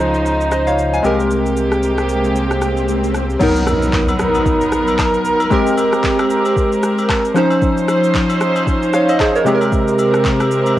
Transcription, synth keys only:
Already playing: F3 C#4 D#4 C5
0.52 C5 D#5
0.67 C#5 F5
0.93 F5 G#5
1.03 G#3 C4 G4 A#4
3.39 F#3 B3 D#4 A#4
5.50 G#3 C4 G4 A#4
7.34 F3 C#4 D#4 C5
8.94 C#5 F5
9.09 C5 D#5
9.20 G#4 C5
9.35 A#4 C#5
9.45 C3 G#3 C4 G4 G#4
9.55 A#4

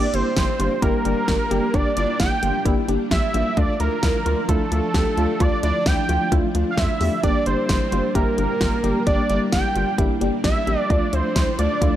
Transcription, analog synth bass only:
0.14 G1
0.37 G1
0.60 G1
0.82 G1
1.05 G1
1.28 G1
1.51 G1
1.74 G1
1.97 G1
2.20 G1
2.43 G1
2.65 G1
2.88 G1
3.11 A#1
3.34 A1
3.57 D2
3.80 D2
4.03 D2
4.26 D2
4.49 D2
4.72 D2
4.94 D2
5.17 D2
5.40 D2
5.63 D2
5.86 D2
6.09 D2
6.32 D2
6.55 D2
6.78 F2
7.01 E2
7.24 G1
7.46 G1
7.69 G1
7.92 G1
8.15 G1
8.38 G1
8.61 G1
8.84 G1
9.07 G1
9.30 G1
9.53 G1
9.75 G1
9.98 G1
10.21 G1
10.44 A#1
10.67 A1
10.90 D2
11.13 D2
11.36 D2
11.59 D2
11.82 D2

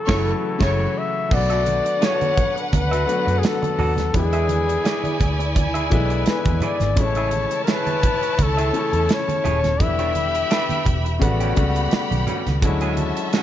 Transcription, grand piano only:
Already playing: C#3 E3 F#3 A3 E4 F#4
0.07 C#3 E3 F#3 A3 E4
0.59 C#3 E3 F#3 A3 E4
1.29 D3 F#3 A3 B3 F#4
3.06 D3 F#3 A3 B3 F#4
4.13 D3 E3 G#3 B3 E4
5.90 D3 E3 G#3 B3 E4
6.96 C#3 E3 G#3 A3 E4
8.73 C#3 E3 A3 C#4
9.79 D3 E3 G3 B3 E4
11.19 C#3 G3 A3 B3 F#4
11.55 C#3 G3 A3 B3 F#4
12.62 D3 F#3 G#3 C#4 E4

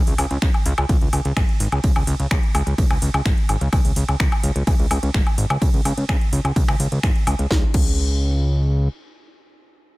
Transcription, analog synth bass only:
0.07 C#2
0.19 C#2
0.31 C#2
0.42 C#2
0.66 C#2
0.78 C#2
0.89 C#2
1.02 C#2
1.13 C#2
1.25 C#2
1.36 G#1
1.60 G#1
1.72 C#2
1.84 C#2
1.96 C#2
2.07 C#2
2.20 C#2
2.31 C#2
2.55 C#2
2.67 C#2
2.78 C#2
2.90 C#2
3.02 C#2
3.14 C#2
3.25 G#1
3.49 G#1
3.61 C#2
3.73 C#2
3.85 C#2
3.96 C#2
4.09 C#2
4.20 C#2
4.43 C#2
4.56 C#2
4.67 C#2
4.79 C#2
4.91 C#2
5.03 C#2
5.14 G#1
5.38 G#1
5.50 C#2
5.62 C#2
5.74 C#2
5.85 C#2
5.98 C#2
6.09 C#2
6.32 C#2
6.45 C#2
6.56 C#2
6.68 C#2
6.80 C#2
6.92 C#2
7.03 G#1
7.27 C#2
7.39 C#2
7.51 C#2
7.74 C#2

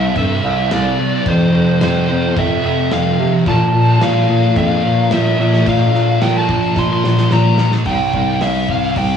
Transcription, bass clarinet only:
Already playing: C2
0.16 G2
0.43 C2
0.71 C2
1.26 F2
1.53 F2
1.81 F2
2.09 F2
2.36 F2
2.63 F2
2.91 F2
3.19 C3
3.46 A#2
3.74 A#2
4.00 A#2
4.29 A#2
4.57 F2
4.85 A#2
5.12 A#2
5.39 A#2
5.66 A#2
5.94 A#2
6.21 A#2
6.49 A#2
6.76 A#2
7.04 A#2
7.31 A#2
7.86 C2
8.14 C2
8.41 C2
8.69 C2
8.96 C2

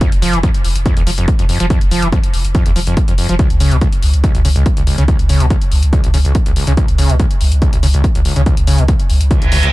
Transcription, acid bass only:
0.01 F2
0.22 F3
0.33 E3
0.43 F2
0.86 F2
0.97 E2
1.07 F3
1.18 F2
1.39 F2
1.49 F2
1.60 F3
1.70 F2
1.91 F3
2.03 E3
2.12 F2
2.55 F2
2.66 E2
2.76 F3
2.87 F2
3.08 F2
3.18 F2
3.29 F3
3.39 C#2
3.60 C#3
3.71 B2
3.81 C#2
4.24 C#2
4.35 B1
4.45 C#3
4.56 C#2
4.77 C#2
4.87 C#2
4.98 C#3
5.08 C#2
5.29 C#3
5.40 B2
5.50 C#2
5.93 C#2
6.04 B1
6.14 C#3
6.25 C#2
6.46 C#2
6.56 C#2
6.67 C#3
6.77 C#2
6.98 C#3
7.10 B2
7.20 C#2
7.62 C#2
7.73 B1
7.83 C#3
7.94 C#2
8.15 C#2
8.25 C#2
8.36 C#3
8.46 C#2
8.67 C#3
8.78 B2
8.89 C#2
9.31 C#2
9.42 B1
9.52 C#2
9.63 C#2

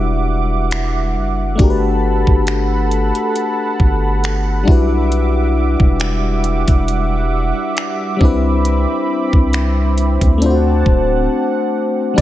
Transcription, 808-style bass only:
Already playing: E1
1.16 F#1
1.59 G1
2.27 G1
3.80 G1
4.68 B1
5.80 E1
6.68 E1
8.21 C2
9.33 C2
10.22 D2
10.86 D1
12.18 E1

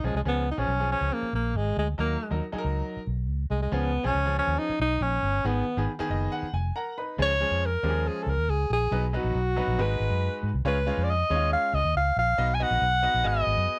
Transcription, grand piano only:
0.04 F3 C#4 G#4
0.25 F3 C#4 G#4
0.57 F3 C#4 G#4
0.80 F3 C#4 G#4
1.98 F#3 D#4 A#4
2.30 F#3 D#4 A#4
2.52 F#3 D#4 G#4
2.58 A#4
3.72 F3 C#4 G#4
4.03 F3 C#4 G#4
4.26 F3 C#4 G#4
5.45 D#3 B3 G#4
5.77 D#3 B3 G#4
5.99 D#3 B3 G#4
6.11 D#5
6.32 F#5
6.54 G#5
6.76 A#4 F#5 A#5
6.98 D#4 B4 B5
7.18 F3 G#3 C#4 G#4
7.40 F3 G#3 C#4 G#4
7.83 F3 G#3 C#4 G4
7.89 G#4
8.92 F#3 B3 D#4 B4
9.13 F#3 B3 D#4 B4
9.56 F#3 B3 D#4 B4
9.78 G#3 D#4 F#4 B4
10.65 G#3 C#4 F4 C#5
10.86 G#3 C#4 F4 C#5
11.30 G#3 C#4 D#4 C#5
11.36 F4
12.38 B3 D#4 F#4 D#5
12.59 B3 D#4 F#4 D#5
13.02 B3 D#4 F#4 D#5
13.24 B3 F#4 G#4 D#5

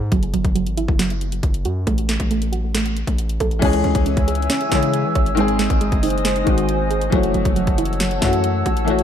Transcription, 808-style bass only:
Already playing: G#2
0.12 F#1
0.34 F#1
0.45 F#1
0.66 G#1
0.88 F#1
1.43 F#1
1.65 F#2
1.87 A1
2.20 A1
3.07 A1
3.40 A1
3.62 C#2
3.84 C#2
3.95 C#2
4.17 C#2
4.72 C#3
5.05 E3
5.15 G#1
5.70 G#1
5.92 F#1
6.47 G#1
7.12 F#1
7.34 F#1
7.45 F#1
7.67 F#1
8.22 F#2
8.66 A1

